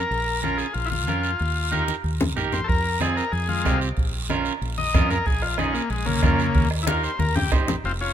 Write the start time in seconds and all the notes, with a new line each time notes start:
Already playing: A#4
0.11 A#1, long guiro
0.42 C#4 F4 A#4, high conga, short guiro
0.57 G#4, short guiro
0.74 A#1 F4, long guiro
0.86 E4
0.90 F4, high conga
1.07 F2 C#4 F4 A#4, high conga, short guiro
1.23 short guiro
1.40 D#2, long guiro
1.72 D#4 G4 A#4, high conga, short guiro
1.88 high conga, short guiro
2.04 D#2, long guiro
2.21 low conga
2.36 A#1 D#4 G4 A#4, low conga, short guiro
2.52 C5, low conga, short guiro
2.64 A4
2.68 F2 A#4, bombo low, long guiro
3.00 C4 F4 G#4, bombo rim, high conga, short guiro
3.17 A#4, short guiro
3.32 F2 G#4, long guiro
3.48 G#3 F4, high conga
3.65 C2 C4 F4 G4, bombo low, bombo rim, high conga, short guiro
3.81 short guiro
3.97 A#1, bombo low, long guiro
4.29 C#4 F4 A#4, bombo rim, high conga, short guiro
4.45 short guiro
4.62 A#1, long guiro
4.78 D#5, high conga
4.93 F2 C#4 F4 A#4, bombo low, bombo rim, high conga, low conga, short guiro
5.10 A#4, low conga, short guiro
5.26 A#1 G#4, bombo low, long guiro
5.42 F4, bombo rim
5.58 C#4 D#4 F4 G#4, bombo rim, high conga, short guiro
5.73 A#3, short guiro
5.90 A#1 G#3, long guiro
6.05 C#3 A#3, high conga
6.23 F2 C#4 F4 A#4, bombo low, bombo rim, high conga, short guiro
6.39 short guiro
6.55 D#2, bombo low, long guiro
6.71 bombo rim
6.83 E4, bombo rim
6.87 D#4 F4 G4 A#4, high conga, short guiro
7.03 C5, short guiro
7.19 D#2 A#4, high conga, long guiro
7.35 G4, low conga
7.52 A#1 D#4 G4 C5, bombo low, bombo rim, low conga, short guiro
7.68 low conga, short guiro
7.84 F1 C4 F4, long guiro
8.01 C#4 F4